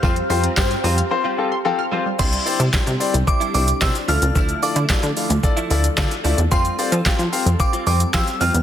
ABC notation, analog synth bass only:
X:1
M:4/4
L:1/16
Q:1/4=111
K:F
V:1 name="Analog synth bass" clef=bass
F,,2 F,,2 G,,2 F,,2 z8 | C,,2 z C, z C, z C,, z2 C,,2 C, z D,, _D,, | D,,2 z D, z D, z D,, z2 D,,2 D, z D,, E,, | F,,2 z F, z F, z F,, z2 F,,2 F, z F,, E,, |]